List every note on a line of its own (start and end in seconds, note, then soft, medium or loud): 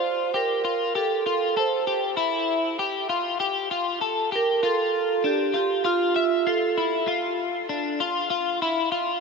0.00 0.34 F4 medium
0.00 0.37 C5 medium
0.34 0.64 G4 medium
0.34 0.98 A#4 medium
0.64 0.95 F4 medium
0.95 1.26 G4 medium
0.95 1.59 A4 medium
1.26 1.57 F4 medium
1.57 1.87 A4 medium
1.57 2.00 C5 medium
1.87 2.17 G4 medium
2.17 2.79 E4 medium
2.79 3.09 G4 medium
3.09 3.40 F4 medium
3.40 3.71 G4 medium
3.71 4.01 F4 medium
4.01 4.32 A4 medium
4.32 4.63 G4 medium
4.32 4.65 A#4 medium
4.63 5.24 F4 medium
4.63 5.27 A4 medium
5.24 5.55 D4 medium
5.24 5.55 G4 medium
5.54 5.83 F4 medium
5.54 5.87 G4 medium
5.85 6.16 F4 medium
5.85 6.49 F4 medium
6.16 6.47 E5 medium
6.47 6.77 F4 medium
6.47 6.90 A4 medium
6.77 7.08 E4 medium
7.07 7.69 F4 medium
7.69 8.00 D4 medium
8.00 8.29 F4 medium
8.30 8.61 F4 medium
8.62 8.91 E4 medium
8.92 9.20 F4 medium